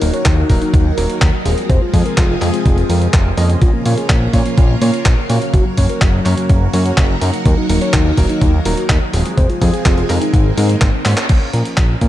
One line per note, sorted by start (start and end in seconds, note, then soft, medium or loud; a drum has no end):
0.00 0.11 D#1 loud
0.00 1.68 D#3 medium
0.00 1.66 F#3 medium
0.00 0.47 F#3 medium
0.00 1.66 A#3 medium
0.00 0.47 A#3 medium
0.00 0.12 D#4 medium
0.00 0.47 D#4 medium
0.00 1.66 F#4 medium
0.00 1.66 A#4 loud
0.00 0.47 A#4 medium
0.00 open hi-hat loud
0.13 0.24 C#5 medium
0.13 closed hi-hat medium
0.25 0.44 D#2 medium
0.25 0.36 D#4 medium
0.25 kick loud
0.25 clap loud
0.25 closed hi-hat medium
0.37 0.48 D#4 medium
0.50 0.59 D#1 medium
0.50 0.95 F#3 loud
0.50 0.95 A#3 medium
0.50 0.95 D#4 medium
0.50 0.95 A#4 loud
0.50 kick medium
0.50 open hi-hat loud
0.62 0.72 D#4 medium
0.62 closed hi-hat medium
0.74 0.92 D#2 loud
0.74 0.84 D#4 medium
0.74 kick loud
0.74 closed hi-hat medium
0.98 1.07 D#1 medium
0.98 1.24 F#3 loud
0.98 1.24 A#3 medium
0.98 1.24 D#4 medium
0.98 1.24 A#4 loud
0.98 open hi-hat loud
1.10 closed hi-hat medium
1.22 1.31 D#2 medium
1.22 kick loud
1.22 clap loud
1.22 closed hi-hat medium
1.45 1.55 D#1 medium
1.45 1.91 F3 medium
1.45 1.91 G#3 medium
1.45 1.91 C4 medium
1.45 1.91 G#4 medium
1.45 open hi-hat loud
1.58 closed hi-hat medium
1.69 1.79 F1 loud
1.69 3.60 C3 medium
1.69 5.50 F3 medium
1.69 3.60 G#3 medium
1.69 3.60 F4 medium
1.69 3.60 G#4 loud
1.69 1.80 C5 loud
1.69 kick loud
1.69 closed hi-hat medium
1.82 1.92 F4 medium
1.94 2.03 F2 loud
1.94 2.39 F3 medium
1.94 2.39 G#3 medium
1.94 2.39 C4 medium
1.94 2.04 F4 medium
1.94 2.39 G#4 medium
1.94 kick medium
1.94 open hi-hat loud
2.06 2.16 A#4 medium
2.06 closed hi-hat medium
2.17 2.36 F1 medium
2.17 2.28 F4 medium
2.17 kick loud
2.17 clap loud
2.17 closed hi-hat medium
2.29 2.40 F4 medium
2.41 2.51 F2 medium
2.41 2.87 F3 medium
2.41 2.87 G#3 medium
2.41 2.87 C4 medium
2.41 2.87 G#4 loud
2.41 clap soft
2.41 open hi-hat loud
2.53 2.64 F4 medium
2.53 closed hi-hat medium
2.65 2.84 F1 loud
2.65 2.76 F4 medium
2.65 kick loud
2.65 closed hi-hat medium
2.78 closed hi-hat soft
2.89 3.08 F2 loud
2.89 3.35 F3 medium
2.89 3.35 G#3 medium
2.89 3.35 C4 medium
2.89 3.35 A#4 medium
2.89 open hi-hat loud
3.02 closed hi-hat soft
3.14 3.32 F1 loud
3.14 kick loud
3.14 clap loud
3.14 closed hi-hat medium
3.37 3.56 F2 medium
3.37 3.83 A#3 medium
3.37 3.83 C#4 medium
3.37 3.83 F4 medium
3.37 3.83 D#5 loud
3.37 open hi-hat loud
3.50 closed hi-hat medium
3.62 3.71 A#1 loud
3.62 7.42 C#3 medium
3.62 9.34 A#3 medium
3.62 5.52 F4 medium
3.62 3.72 F4 loud
3.62 5.52 A#4 medium
3.62 kick loud
3.62 closed hi-hat medium
3.74 3.84 A#3 medium
3.85 3.95 A#2 loud
3.85 3.96 A#3 medium
3.85 4.31 A#3 medium
3.85 4.31 C#4 medium
3.85 4.31 F4 medium
3.85 4.31 C#5 medium
3.85 open hi-hat loud
3.98 4.08 G#4 loud
3.98 closed hi-hat soft
4.10 4.28 A#1 medium
4.10 4.20 A#3 medium
4.10 kick loud
4.10 clap loud
4.10 closed hi-hat medium
4.22 4.32 A#3 medium
4.33 4.43 A#2 medium
4.33 4.79 A#3 medium
4.33 4.79 C#4 medium
4.33 4.79 F4 medium
4.33 4.79 C#5 loud
4.33 kick medium
4.33 open hi-hat loud
4.46 4.56 A#3 medium
4.46 closed hi-hat medium
4.57 4.76 A#1 medium
4.57 4.68 A#3 medium
4.57 kick loud
4.57 closed hi-hat medium
4.81 4.91 A#2 medium
4.81 5.08 A#3 loud
4.81 5.08 C#4 medium
4.81 5.08 F4 medium
4.81 5.08 C#5 loud
4.81 open hi-hat loud
4.94 closed hi-hat soft
5.06 5.15 A#1 medium
5.06 kick loud
5.06 clap loud
5.06 closed hi-hat medium
5.30 5.39 A#2 medium
5.30 5.75 A#3 medium
5.30 5.75 C#4 medium
5.30 5.75 F#4 medium
5.30 5.75 C#5 medium
5.30 open hi-hat loud
5.42 closed hi-hat soft
5.54 5.63 F#1 loud
5.54 9.34 F#3 medium
5.54 5.64 F#4 loud
5.54 9.34 F#4 medium
5.54 9.34 A#4 medium
5.54 kick loud
5.54 closed hi-hat medium
5.65 5.76 F#3 medium
5.77 5.87 F#2 loud
5.77 5.88 F#3 medium
5.77 6.23 A#3 medium
5.77 6.23 C#4 medium
5.77 6.23 F#4 medium
5.77 6.23 C#5 loud
5.77 kick medium
5.77 open hi-hat loud
5.89 6.00 A#4 medium
5.89 closed hi-hat medium
6.01 6.20 F#1 medium
6.01 6.12 F#3 medium
6.01 kick loud
6.01 clap loud
6.01 closed hi-hat medium
6.13 6.24 F#3 medium
6.25 6.35 F#2 medium
6.25 6.71 A#3 medium
6.25 6.71 C#4 medium
6.25 6.71 F#4 medium
6.25 6.71 C#5 loud
6.25 clap soft
6.25 open hi-hat loud
6.37 6.48 F#3 medium
6.37 closed hi-hat medium
6.49 6.68 F#1 medium
6.49 6.60 F#3 medium
6.49 kick loud
6.49 closed hi-hat medium
6.73 6.92 F#2 medium
6.73 7.00 A#3 loud
6.73 7.00 C#4 medium
6.73 7.00 F#4 medium
6.73 7.00 C#5 loud
6.73 open hi-hat loud
6.86 closed hi-hat soft
6.97 7.16 F#1 loud
6.97 kick loud
6.97 clap loud
6.97 closed hi-hat medium
7.21 7.31 F#2 loud
7.21 7.67 F#3 medium
7.21 7.67 A#3 medium
7.21 7.67 D#4 medium
7.21 7.67 A#4 medium
7.21 open hi-hat loud
7.33 closed hi-hat medium
7.45 7.55 D#2 loud
7.45 9.36 D#3 medium
7.45 7.56 A#4 loud
7.45 kick loud
7.45 closed hi-hat medium
7.58 7.68 D#4 medium
7.69 7.79 D#1 loud
7.69 8.15 F#3 medium
7.69 8.15 A#3 medium
7.69 7.80 D#4 medium
7.69 8.15 D#4 medium
7.69 8.15 A#4 loud
7.69 open hi-hat loud
7.81 7.92 C#5 medium
7.81 closed hi-hat medium
7.93 8.12 D#2 medium
7.93 8.04 D#4 medium
7.93 kick loud
7.93 clap loud
7.93 closed hi-hat medium
8.06 8.16 D#4 medium
8.17 8.27 D#1 medium
8.17 8.63 F#3 medium
8.17 8.63 A#3 medium
8.17 8.63 D#4 medium
8.17 8.63 A#4 loud
8.17 kick medium
8.17 open hi-hat loud
8.29 8.40 D#4 medium
8.29 closed hi-hat medium
8.41 8.60 D#2 loud
8.41 8.52 D#4 medium
8.41 kick loud
8.41 closed hi-hat medium
8.65 8.75 D#1 medium
8.65 8.92 F#3 loud
8.65 8.92 A#3 medium
8.65 8.92 D#4 medium
8.65 8.92 A#4 loud
8.65 open hi-hat loud
8.77 closed hi-hat soft
8.89 8.99 D#2 medium
8.89 kick loud
8.89 clap loud
8.89 closed hi-hat medium
9.13 9.23 D#1 medium
9.13 9.59 F3 medium
9.13 9.59 G#3 medium
9.13 9.59 C4 medium
9.13 9.59 G#4 medium
9.13 open hi-hat loud
9.26 closed hi-hat medium
9.37 9.47 F1 loud
9.37 10.33 C3 medium
9.37 10.33 F3 medium
9.37 11.28 G#3 medium
9.37 10.33 F4 medium
9.37 11.28 G#4 loud
9.37 9.48 C5 loud
9.37 kick loud
9.37 closed hi-hat medium
9.49 9.60 F4 medium
9.49 closed hi-hat soft
9.61 9.71 F2 loud
9.61 10.07 F3 medium
9.61 10.07 G#3 medium
9.61 10.07 C4 medium
9.61 9.72 F4 medium
9.61 10.07 G#4 loud
9.61 kick medium
9.61 open hi-hat loud
9.73 9.84 G#4 medium
9.73 closed hi-hat medium
9.85 10.04 F1 medium
9.85 9.96 F4 medium
9.85 kick loud
9.85 clap loud
9.85 closed hi-hat medium
9.97 10.08 F4 medium
9.97 closed hi-hat soft
10.09 10.19 F2 medium
10.09 10.55 G#3 medium
10.09 10.55 C4 medium
10.09 10.55 D#4 medium
10.09 10.55 A#4 loud
10.09 clap soft
10.09 open hi-hat loud
10.22 10.32 D#4 medium
10.22 closed hi-hat medium
10.33 10.52 G#1 medium
10.33 11.29 D#3 medium
10.33 11.29 A#3 medium
10.33 11.29 C4 medium
10.33 10.44 D#4 medium
10.33 kick loud
10.33 closed hi-hat medium
10.57 10.76 G#2 medium
10.57 10.84 G#3 loud
10.57 10.84 C4 medium
10.57 10.84 D#4 loud
10.57 10.84 A#4 loud
10.57 open hi-hat loud
10.69 closed hi-hat medium
10.81 10.91 G#1 medium
10.81 kick loud
10.81 clap loud
10.81 closed hi-hat medium
11.05 11.15 G#2 loud
11.05 11.51 A#3 medium
11.05 11.51 C#4 medium
11.05 11.51 F4 medium
11.05 11.51 C#5 medium
11.05 clap medium
11.05 open hi-hat loud
11.17 clap loud
11.17 closed hi-hat medium
11.29 11.39 A#1 loud
11.29 kick loud
11.29 closed hi-hat medium
11.29 crash medium
11.53 11.63 A#2 loud
11.53 11.99 F3 medium
11.53 11.99 A#3 medium
11.53 11.99 C#4 medium
11.53 11.99 A#4 medium
11.53 closed hi-hat medium
11.65 closed hi-hat medium
11.77 11.96 A#1 medium
11.77 kick loud
11.77 clap loud
11.77 closed hi-hat medium
12.01 12.08 A#2 medium
12.01 12.08 F3 medium
12.01 12.08 A#3 medium
12.01 12.08 C#4 medium
12.01 12.08 A#4 medium
12.01 kick medium
12.01 closed hi-hat medium